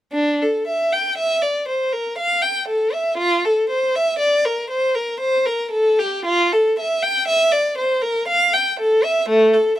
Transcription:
0.12 0.39 D4 medium
0.42 0.67 A4 medium
0.67 0.92 E5 medium
0.93 1.18 G5 medium
1.18 1.42 E5 medium
1.42 1.68 D5 medium
1.68 1.93 C5 medium
1.92 2.18 A#4 medium
2.18 2.43 F5 medium
2.42 2.68 G5 medium
2.68 2.93 A4 medium
2.93 3.18 E5 medium
3.18 3.43 F4 medium
3.45 3.69 A4 medium
3.69 3.94 C5 medium
3.95 4.20 E5 medium
4.19 4.43 D5 medium
4.45 4.70 A#4 medium
4.70 4.94 C5 medium
4.95 5.19 A#4 medium
5.20 5.44 C5 medium
5.46 5.71 A#4 medium
5.71 5.97 A4 medium
5.99 6.25 G4 medium
6.25 6.51 F4 medium
6.53 6.77 A4 medium
6.79 7.03 E5 medium
7.03 7.27 G5 medium
7.28 7.52 E5 medium
7.52 7.77 D5 medium
7.78 8.02 C5 medium
8.02 8.27 A#4 medium
8.28 8.52 F5 medium
8.53 8.77 G5 medium
8.79 9.02 A4 medium
9.03 9.27 E5 medium
9.29 9.51 A3 medium
9.54 9.76 A4 medium

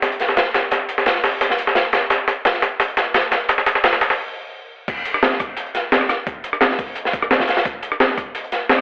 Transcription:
0.02 kick loud
0.02 snare medium
0.02 closed hi-hat medium
0.12 closed hi-hat soft
0.20 snare soft
0.20 closed hi-hat medium
0.29 snare soft
0.37 kick loud
0.37 snare loud
0.37 closed hi-hat medium
0.37 closed hi-hat loud
0.54 snare soft
0.54 snare medium
0.54 closed hi-hat medium
0.71 kick loud
0.71 snare medium
0.71 closed hi-hat medium
0.71 closed hi-hat loud
0.89 closed hi-hat medium
0.98 snare medium
1.06 kick loud
1.06 snare loud
1.06 closed hi-hat loud
1.06 closed hi-hat medium
1.15 snare soft
1.24 snare medium
1.24 closed hi-hat medium
1.24 open hi-hat medium
1.41 kick medium
1.41 snare medium
1.41 closed hi-hat medium
1.50 snare medium
1.58 closed hi-hat medium
1.67 snare medium
1.75 kick loud
1.75 snare loud
1.75 closed hi-hat medium
1.93 snare medium
1.93 closed hi-hat medium
2.10 kick loud
2.10 snare medium
2.10 closed hi-hat medium
2.28 snare medium
2.28 closed hi-hat medium
2.28 shaker medium
2.45 kick loud
2.45 snare medium
2.45 snare loud
2.45 closed hi-hat medium
2.45 shaker soft
2.54 snare soft
2.54 shaker soft
2.62 snare medium
2.62 closed hi-hat medium
2.62 shaker medium
2.80 kick loud
2.80 snare medium
2.80 closed hi-hat medium
2.88 closed hi-hat soft
2.97 snare medium
2.97 snare soft
2.97 closed hi-hat medium
2.97 shaker medium
3.14 kick loud
3.14 snare loud
3.14 snare medium
3.14 closed hi-hat medium
3.31 snare soft
3.31 snare medium
3.31 closed hi-hat medium
3.31 shaker medium
3.49 kick loud
3.49 snare medium
3.49 closed hi-hat medium
3.58 snare medium
3.66 snare loud
3.66 closed hi-hat medium
3.66 shaker medium
3.75 snare medium
3.84 kick loud
3.84 snare loud
3.84 closed hi-hat medium
3.84 shaker soft
3.93 snare soft
3.93 snare medium
3.93 shaker soft
4.01 snare loud
4.01 closed hi-hat medium
4.01 open hi-hat medium
4.01 shaker medium
4.10 snare medium
4.88 kick loud
4.88 closed hi-hat medium
4.88 crash loud
5.05 closed hi-hat loud
5.05 closed hi-hat medium
5.05 shaker medium
5.14 cross-stick soft
5.23 snare loud
5.23 closed hi-hat loud
5.23 closed hi-hat medium
5.23 shaker soft
5.32 snare soft
5.32 shaker soft
5.39 kick loud
5.39 cross-stick soft
5.39 closed hi-hat medium
5.39 closed hi-hat loud
5.39 shaker medium
5.57 closed hi-hat medium
5.66 closed hi-hat soft
5.75 snare soft
5.75 closed hi-hat loud
5.75 closed hi-hat medium
5.75 shaker medium
5.92 snare loud
5.92 closed hi-hat medium
6.01 cross-stick soft
6.09 cross-stick medium
6.09 snare medium
6.09 closed hi-hat medium
6.09 closed hi-hat loud
6.09 shaker medium
6.27 kick loud
6.27 closed hi-hat medium
6.44 closed hi-hat medium
6.44 closed hi-hat loud
6.44 shaker medium
6.53 cross-stick soft
6.61 snare loud
6.61 closed hi-hat medium
6.61 shaker soft
6.70 snare soft
6.70 shaker soft
6.79 kick loud
6.79 closed hi-hat medium
6.79 open hi-hat medium
6.79 shaker medium
6.95 closed hi-hat medium
7.05 snare medium
7.13 kick loud
7.13 closed hi-hat medium
7.13 closed hi-hat loud
7.13 shaker medium
7.22 cross-stick medium
7.31 snare loud
7.31 closed hi-hat medium
7.40 kick medium
7.40 snare loud
7.40 closed hi-hat medium
7.47 snare loud
7.47 closed hi-hat medium
7.47 closed hi-hat loud
7.47 shaker medium
7.57 snare loud
7.57 closed hi-hat medium
7.65 kick loud
7.65 closed hi-hat medium
7.83 closed hi-hat medium
7.83 shaker medium
7.92 cross-stick soft
8.00 snare loud
8.00 closed hi-hat medium
8.00 shaker soft
8.09 snare soft
8.09 shaker soft
8.18 kick loud
8.18 cross-stick soft
8.18 closed hi-hat medium
8.18 shaker medium
8.35 closed hi-hat medium
8.44 closed hi-hat soft
8.52 snare soft
8.52 closed hi-hat loud
8.52 closed hi-hat medium
8.52 shaker medium
8.69 snare loud
8.69 closed hi-hat medium

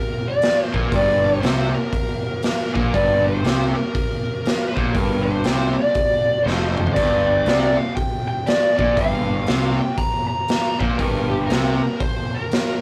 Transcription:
0.00 0.28 A#4 medium
0.28 0.73 D5 medium
0.42 snare loud
0.42 open hi-hat soft
0.74 0.91 A#1 medium
0.74 0.92 A#2 medium
0.74 0.93 A#4 medium
0.74 kick medium
0.92 1.39 G1 medium
0.92 1.42 G2 medium
0.92 1.27 D5 medium
0.92 kick medium
0.92 open hi-hat soft
1.25 1.74 C5 medium
1.41 1.73 C2 medium
1.41 1.73 C3 medium
1.41 snare loud
1.41 open hi-hat medium
1.74 2.74 A#4 medium
1.93 kick loud
1.93 open hi-hat soft
2.42 snare loud
2.42 open hi-hat medium
2.75 2.93 A#1 medium
2.75 2.93 A#2 medium
2.75 2.92 A#4 medium
2.75 kick medium
2.94 3.41 G1 medium
2.94 3.44 G2 medium
2.94 3.27 D5 medium
2.94 kick medium
2.94 open hi-hat medium
3.25 3.74 C5 medium
3.44 3.73 C2 medium
3.44 3.75 C3 medium
3.44 snare loud
3.44 open hi-hat soft
3.75 4.64 A#4 medium
3.95 kick loud
3.95 open hi-hat soft
4.45 snare loud
4.45 open hi-hat soft
4.68 4.74 B4 medium
4.75 4.93 A#1 medium
4.75 4.95 A#2 medium
4.75 4.92 C5 medium
4.75 kick medium
4.92 5.41 G1 medium
4.92 5.45 G2 medium
4.92 5.22 A#4 medium
4.92 kick loud
4.92 open hi-hat medium
5.23 5.71 C5 medium
5.44 5.75 C2 medium
5.44 5.76 C3 medium
5.44 snare loud
5.44 open hi-hat medium
5.74 6.43 D5 medium
5.95 kick loud
5.95 open hi-hat medium
6.44 6.92 F1 medium
6.44 6.96 F2 medium
6.44 6.75 C5 medium
6.44 snare medium
6.76 6.93 C5 medium
6.76 mid tom medium
6.87 floor tom medium
6.93 7.43 G1 medium
6.93 7.73 D5 medium
6.93 kick medium
6.93 open hi-hat soft
6.93 crash medium
6.97 7.46 G2 medium
7.46 7.76 C2 medium
7.46 7.78 C3 medium
7.46 snare loud
7.46 open hi-hat soft
7.77 7.96 F5 medium
7.96 8.27 G5 medium
7.96 kick loud
7.96 open hi-hat soft
8.28 8.47 G5 medium
8.47 8.76 D5 loud
8.47 snare loud
8.47 open hi-hat soft
8.77 8.96 A#1 medium
8.77 8.97 A#2 medium
8.77 8.95 D5 medium
8.77 kick loud
8.96 9.44 G1 medium
8.96 9.47 G2 medium
8.96 9.79 F5 loud
8.96 kick loud
8.96 open hi-hat medium
9.46 9.78 C2 medium
9.46 9.79 C3 medium
9.46 snare loud
9.46 open hi-hat medium
9.79 9.98 G5 medium
9.98 10.26 A#5 loud
9.98 kick loud
9.98 open hi-hat soft
10.27 10.81 A#5 medium
10.48 snare loud
10.48 open hi-hat medium
10.79 10.98 A#1 medium
10.79 10.98 A#2 medium
10.79 10.99 C5 medium
10.79 kick medium
10.97 11.46 G1 medium
10.97 11.49 G2 loud
10.97 11.29 A#4 loud
10.97 kick loud
10.97 open hi-hat medium
11.29 11.35 G4 medium
11.47 11.80 C2 medium
11.47 11.81 C3 loud
11.47 12.00 A#4 medium
11.47 open hi-hat medium
11.52 snare loud
12.00 12.33 C5 medium
12.00 kick loud
12.00 open hi-hat soft
12.34 12.81 A#4 medium
12.51 snare loud
12.51 open hi-hat soft

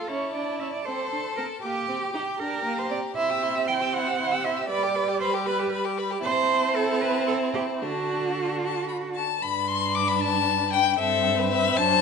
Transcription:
0.00 0.10 F4 medium
0.08 0.34 C#4 medium
0.08 0.85 E4 soft
0.08 0.34 C#5 medium
0.08 0.84 A5 soft
0.34 0.60 D4 medium
0.34 0.61 D5 medium
0.60 0.68 C#4 medium
0.60 0.73 E5 medium
0.73 0.87 D5 medium
0.86 1.11 C4 medium
0.86 1.61 A4 medium
0.86 1.36 C5 medium
0.86 1.64 A5 medium
1.12 1.20 D4 medium
1.37 1.45 C4 medium
1.37 1.45 A#4 medium
1.63 1.88 A#3 medium
1.63 2.38 G4 medium
1.63 2.13 G4 medium
1.63 2.39 D6 soft
1.88 1.96 C4 medium
2.14 2.22 D#4 medium
2.14 2.41 G4 medium
2.39 2.64 D4 medium
2.39 3.15 G4 medium
2.39 2.80 A#4 medium
2.39 3.15 A#5 medium
2.65 2.90 A#3 medium
2.79 2.90 C5 medium
2.90 2.98 C4 medium
2.90 2.99 D5 medium
3.16 4.66 C4 medium
3.16 3.32 E4 medium
3.16 3.69 E5 loud
3.16 3.32 C6 medium
3.30 3.44 G4 medium
3.30 3.44 E6 medium
3.43 3.57 E4 medium
3.43 3.57 C6 medium
3.55 3.68 G4 soft
3.55 3.67 E6 medium
3.68 3.82 E4 medium
3.68 3.95 G5 medium
3.68 3.83 C6 medium
3.81 3.95 G4 medium
3.81 3.95 E6 medium
3.93 4.09 E4 medium
3.93 4.46 F#5 loud
3.93 4.08 C6 medium
4.07 4.19 G4 medium
4.07 4.18 E6 medium
4.19 4.34 E4 medium
4.19 4.33 C6 medium
4.32 4.47 G4 medium
4.32 4.46 E6 medium
4.44 4.60 E4 medium
4.44 4.69 E5 medium
4.44 4.58 C6 medium
4.57 4.69 G4 medium
4.57 4.69 E6 medium
4.70 6.21 G3 medium
4.70 4.84 B4 medium
4.70 5.20 D5 loud
4.70 4.84 B5 medium
4.82 4.97 G4 medium
4.82 4.97 D6 medium
4.95 5.10 B4 medium
4.95 5.10 B5 medium
5.08 5.20 G4 medium
5.08 5.21 D6 medium
5.21 5.35 B4 medium
5.21 5.29 C5 medium
5.21 5.36 B5 medium
5.34 5.48 G4 medium
5.34 5.48 D6 medium
5.46 5.71 B4 medium
5.46 5.61 B4 medium
5.46 5.61 B5 medium
5.59 5.71 G4 medium
5.59 5.72 D6 medium
5.71 5.86 B4 medium
5.71 5.87 B5 medium
5.85 6.00 G4 medium
5.85 6.00 D6 medium
5.98 6.12 B4 medium
5.98 6.14 B5 medium
6.11 6.22 G4 medium
6.11 6.24 D6 medium
6.23 7.83 C4 medium
6.23 7.83 E4 medium
6.23 6.77 C5 loud
6.23 7.78 A5 medium
6.76 7.03 A4 loud
7.01 7.27 B4 medium
7.28 7.36 A4 medium
7.54 7.62 G4 medium
7.81 9.22 D3 medium
7.81 9.22 D4 medium
7.81 9.13 F#4 medium
7.81 8.56 A5 medium
8.62 8.87 A5 medium
8.89 8.97 B5 medium
9.16 9.44 A5 medium
9.42 10.96 G2 medium
9.42 10.96 D4 medium
9.42 10.95 B4 medium
9.42 9.70 B5 medium
9.68 9.97 C6 medium
9.95 10.10 D6 loud
10.08 10.23 B5 medium
10.21 10.73 A5 loud
10.73 10.98 G5 loud
10.99 11.76 G2 medium
10.99 11.79 C4 medium
10.99 11.40 A4 medium
10.99 11.50 E5 loud
11.39 11.78 B4 medium
11.50 11.78 E5 loud
11.77 12.02 F#2 medium
11.77 12.02 D4 medium
11.77 12.02 C5 medium
11.77 12.02 A5 loud

